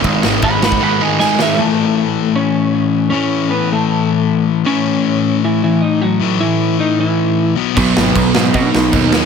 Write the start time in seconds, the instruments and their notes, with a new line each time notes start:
0.04 picked electric bass G#1, overdriven electric guitar G#2 D#3 G#3, kick, ride
0.23 picked electric bass G#1, overdriven electric guitar G#2 D#3 G#3, snare
0.42 picked electric bass G#1, overdriven electric guitar G#2 D#3 G#3, lead electric guitar F#5 B5, kick, ride
0.61 overdriven electric guitar G#2 D#3 G#3, lead electric guitar F#5 B5, snare
0.72 kick
0.82 overdriven electric guitar G#2 D#3 G#3, lead electric guitar F#5 B5
1.00 overdriven electric guitar G#2 D#3 G#3, lead electric guitar D#5 G#5
1.19 overdriven electric guitar G#2 D#3 G#3, lead electric guitar D#5 G#5, snare
1.38 overdriven electric guitar G#2 D#3 G#3, lead electric guitar E5, snare
1.56 overdriven electric guitar A2 E3 A3, lead electric guitar A3 A4
2.35 lead electric guitar C#4 C#5
3.10 overdriven electric guitar A2 E3, lead electric guitar C#4 C#5
3.14 overdriven electric guitar A3
3.50 lead electric guitar B3 B4
3.72 lead electric guitar A3 A4
4.65 overdriven electric guitar A2 E3 A3, lead electric guitar C#4 C#5
5.44 lead electric guitar E3 E4
5.64 lead electric guitar E3 E4
5.82 lead electric guitar D#4 D#5
6.02 lead electric guitar F#3 F#4
6.20 overdriven electric guitar A2 E3 A3
6.40 lead electric guitar E3 E4
6.80 lead electric guitar D#4 D#5
6.99 lead electric guitar E3 E4
7.56 overdriven electric guitar B2 F#3 B3
7.76 picked electric bass B1, overdriven electric guitar B2 F#3 B3, lead electric guitar B3 B4, kick, crash
7.97 picked electric bass G#1, snare
8.16 picked electric bass B1, kick, crash
8.35 picked electric bass G#2, overdriven electric guitar B2 F#3 B3, snare
8.52 distorted electric guitar B2 F#3 B3, picked electric bass B2, lead electric guitar D#4 D#5, kick, crash
8.75 picked electric bass B1, snare
8.92 picked electric bass D#2, overdriven electric guitar B2 F#3 B3, kick, crash
9.11 overdriven electric guitar B2 F#3, snare
9.15 overdriven electric guitar B3